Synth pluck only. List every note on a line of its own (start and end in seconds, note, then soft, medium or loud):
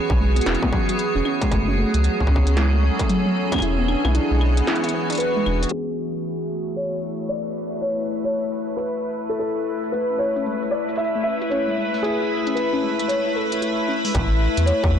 0.10 0.15 C#4 medium
0.20 0.34 G#3 medium
0.36 0.45 B3 medium
0.46 0.60 C#4 medium
0.63 0.72 B3 loud
0.73 0.81 F#3 medium
0.89 0.97 F#3 medium
1.15 1.20 C#4 medium
1.25 1.34 C#4 medium
1.42 1.50 G#3 medium
1.52 1.65 A3 medium
1.68 1.76 C#4 medium
1.78 1.93 A3 loud
1.94 1.99 F#3 medium
2.04 2.18 F#3 medium
2.31 2.39 C#4 medium
2.47 2.52 C#4 medium
2.57 2.71 G#3 medium
2.73 2.82 A3 medium
2.83 2.97 C#4 medium
3.00 3.09 A3 loud
3.10 3.18 F#3 medium
3.26 3.34 F#3 medium
3.52 3.57 C#4 medium
3.62 3.70 E4 medium
3.78 3.87 B3 medium
3.88 4.02 D4 medium
4.05 4.13 E4 medium
4.15 4.30 D4 loud
4.31 4.36 G#3 medium
4.41 4.55 G#3 medium
4.67 4.76 E4 medium
4.84 4.89 E4 medium
4.94 5.08 B3 medium
5.10 5.18 D4 loud
5.36 5.41 G#3 medium
5.46 5.60 D4 medium
5.63 5.68 B3 medium
9.94 10.08 A3 medium
10.10 10.18 C#4 medium
10.20 10.34 E4 medium
10.36 10.46 C#4 medium
10.46 10.55 G#3 medium
10.63 10.71 G#3 medium
10.89 10.94 E4 medium
10.99 11.07 E4 medium
11.15 11.24 A3 medium
11.25 11.39 C#4 medium
11.42 11.50 E4 medium
11.52 11.67 C#4 loud
11.68 11.73 G#3 medium
11.78 11.92 G#3 medium
12.04 12.12 E4 medium
12.20 12.26 E4 medium
12.31 12.44 A3 medium
12.47 12.55 C#4 medium
12.57 12.71 E4 medium
12.73 12.83 C#4 medium
12.83 12.91 G#3 medium
12.99 13.08 G#3 medium
13.26 13.31 E4 medium
13.36 13.50 A4 loud
13.52 13.57 E4 medium
13.62 13.78 E4 medium
13.88 14.02 C#4 medium
14.05 14.13 G#3 medium